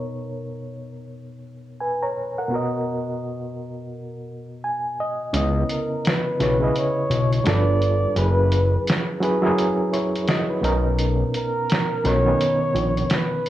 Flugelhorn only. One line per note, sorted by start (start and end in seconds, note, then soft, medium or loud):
5.71 6.08 A#4 medium
6.07 6.79 B4 medium
6.77 7.46 C#5 medium
7.48 8.20 D5 loud
8.19 8.87 B4 medium
11.37 12.09 A#4 loud
12.08 13.11 C#5 loud
13.13 13.49 B4 medium